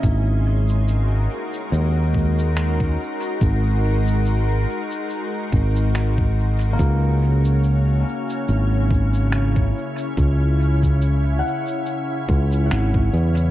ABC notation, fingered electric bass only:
X:1
M:4/4
L:1/8
Q:"Swing 16ths" 1/4=71
K:C#dor
V:1 name="Fingered electric bass" clef=bass
G,,,3 z D,,3 z | G,,,3 z2 G,,,3 | C,,3 z G,,,3 z | C,,3 z2 C,, G,,, E,, |]